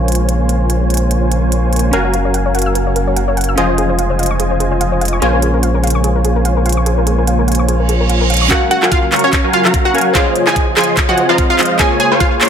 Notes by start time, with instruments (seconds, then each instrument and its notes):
Already playing: sub bass A#1, ambient pad C#3 G#3 A#3 F5, supersaw synth A#3 F4 C5 C#5 G#5, synth keys C#4 G#4 A#4 F5
0.08 closed hi-hat
0.12 closed hi-hat
0.15 closed hi-hat
0.29 closed hi-hat
0.49 closed hi-hat
0.70 closed hi-hat
0.90 closed hi-hat
0.94 closed hi-hat
0.97 closed hi-hat
1.11 closed hi-hat
1.32 closed hi-hat
1.52 closed hi-hat
1.73 closed hi-hat
1.76 closed hi-hat
1.79 closed hi-hat
1.91 sub bass F#1, supersaw synth F#3 F#4 A#4 F5 G#5, ambient pad F#3, synth keys C#4 F#4 A#4, synth arpeggio sound A#4, closed hi-hat
1.95 synth keys F5
2.05 synth arpeggio sound C#5
2.14 synth arpeggio sound A#4, closed hi-hat
2.25 synth arpeggio sound C#5
2.34 synth arpeggio sound F#5, closed hi-hat
2.46 synth arpeggio sound C#5
2.55 synth arpeggio sound F#5, closed hi-hat
2.59 closed hi-hat
2.62 closed hi-hat
2.66 synth arpeggio sound E6
2.75 synth arpeggio sound A#4, closed hi-hat
2.87 synth arpeggio sound C#5
2.96 synth arpeggio sound A#4, closed hi-hat
3.07 synth arpeggio sound C#5
3.16 synth arpeggio sound F#5, closed hi-hat
3.28 synth arpeggio sound C#5
3.37 synth arpeggio sound F#5, closed hi-hat
3.41 closed hi-hat
3.44 closed hi-hat
3.49 synth arpeggio sound E6
3.56 sub bass F1, supersaw synth F3 F4 C5 D#5 G#5, ambient pad G#3 C5, synth keys C#4 G#4 C5 F5, synth arpeggio sound G#4, closed hi-hat
3.69 synth arpeggio sound C5
3.78 synth arpeggio sound G#4, closed hi-hat
3.89 synth arpeggio sound C5
3.99 synth arpeggio sound F5, closed hi-hat
4.10 synth arpeggio sound C5
4.19 synth arpeggio sound F5, closed hi-hat
4.23 closed hi-hat
4.26 closed hi-hat
4.31 synth arpeggio sound C#6
4.40 synth arpeggio sound G#4, closed hi-hat
4.51 synth arpeggio sound C5
4.60 synth arpeggio sound G#4, closed hi-hat
4.71 synth arpeggio sound C5
4.81 synth arpeggio sound F5, closed hi-hat
4.92 synth arpeggio sound C5
5.01 synth arpeggio sound F5, closed hi-hat
5.05 closed hi-hat
5.08 closed hi-hat
5.13 synth arpeggio sound C#6
5.20 sub bass A#1, supersaw synth A#3 F4 C5 C#5 G#5, ambient pad A#3, synth keys C#4 G#4 A#4 F5, synth arpeggio sound G#4, closed hi-hat
5.33 synth arpeggio sound A#4
5.42 synth arpeggio sound G#4, closed hi-hat
5.54 synth arpeggio sound A#4
5.63 synth arpeggio sound F5, closed hi-hat
5.74 synth arpeggio sound A#4
5.83 synth arpeggio sound F5, closed hi-hat
5.87 closed hi-hat
5.90 closed hi-hat
5.95 synth arpeggio sound C#6
6.04 synth arpeggio sound G#4, closed hi-hat
6.16 synth arpeggio sound A#4
6.25 synth arpeggio sound G#4, closed hi-hat
6.36 synth arpeggio sound A#4
6.45 synth arpeggio sound F5, closed hi-hat
6.57 synth arpeggio sound A#4
6.66 synth arpeggio sound F5, closed hi-hat
6.69 closed hi-hat
6.72 closed hi-hat
6.77 synth arpeggio sound C#6
6.86 synth arpeggio sound G#4, closed hi-hat
6.98 synth arpeggio sound A#4
7.07 synth arpeggio sound G#4, closed hi-hat
7.18 synth arpeggio sound A#4
7.27 synth arpeggio sound F5, closed hi-hat
7.39 synth arpeggio sound A#4
7.48 synth arpeggio sound F5, closed hi-hat
7.52 closed hi-hat
7.55 closed hi-hat
7.59 synth arpeggio sound C#6
7.68 synth arpeggio sound G#4, closed hi-hat, reverse cymbal
7.80 synth arpeggio sound A#4
7.89 synth arpeggio sound G#4, closed hi-hat
8.00 synth arpeggio sound A#4
8.09 synth arpeggio sound F5, closed hi-hat
8.21 synth arpeggio sound A#4
8.30 synth arpeggio sound F5, closed hi-hat
8.34 closed hi-hat
8.37 closed hi-hat
8.41 synth arpeggio sound C#6
8.48 ambient pad C#3 F#3 A#3 F5, supersaw synth F#3 F#4 A#4 F5 G#5, synth keys C#4 F#4 A#4, synth pluck F#4 F#5, kick, clap, closed hi-hat
8.52 synth keys F5
8.71 synth pluck F#4 F#5, closed hi-hat
8.83 supersaw synth F#3 F#4 A#4 F5 G#5, clap
8.92 synth pluck F4 F5, kick, closed hi-hat
9.12 supersaw synth F#3 F#4 A#4 F5 C#6, clap, closed hi-hat
9.16 closed hi-hat
9.19 closed hi-hat
9.24 synth pluck C#4 C#5
9.33 kick, clap, closed hi-hat
9.44 supersaw synth F#3 F#4 A#4 F5 G#5
9.53 synth pluck F4 F5, closed hi-hat
9.65 supersaw synth F#3 F#4 A#4 F5 A#5, clap
9.74 kick, closed hi-hat
9.85 synth pluck F#4 F#5
9.93 supersaw synth F#3 F#4 A#4 F5 G#5, synth keys C#4 F#4 A#4 F5, closed hi-hat
9.98 closed hi-hat
10.01 closed hi-hat
10.13 ambient pad F2 G#3, supersaw synth F3 F4 D#5 G#5, synth keys F4 G#4 C5, synth pluck F4 F5, kick, clap, closed hi-hat
10.17 synth keys C#5
10.36 closed hi-hat
10.47 supersaw synth F3 F4 C5 D#5 G#5, synth pluck G#4 G#5, clap
10.56 kick, closed hi-hat
10.77 supersaw synth F3 F4 C5 D#5 C6, synth pluck G#4 G#5, clap, closed hi-hat
10.81 closed hi-hat
10.84 closed hi-hat
10.97 kick, clap, closed hi-hat
11.09 supersaw synth F3 F4 C5 D#5 G#5, synth pluck F#4 F#5
11.16 synth keys C4 F4 G#4, closed hi-hat
11.20 synth keys C5
11.29 supersaw synth F3 F4 C5 D#5 A#5, synth pluck F4 F5
11.38 kick, closed hi-hat
11.50 synth pluck F4 F5
11.59 supersaw synth F3 F4 C5 D#5 F5, clap, closed hi-hat
11.63 closed hi-hat
11.65 closed hi-hat
11.77 synth keys A#3 F4 G#4, supersaw synth A#3 F4 C5 C#5 G#5, ambient pad A#3, synth pluck G#4 G#5, kick, clap, closed hi-hat
11.81 synth keys C#5
12.00 synth pluck G#4 G#5, closed hi-hat
12.12 supersaw synth A#3 F4 C5 C#5 G#5
12.20 synth pluck F4 F5, kick, closed hi-hat
12.41 supersaw synth A#3 F4 C5 C#5 C6, clap, closed hi-hat
12.45 closed hi-hat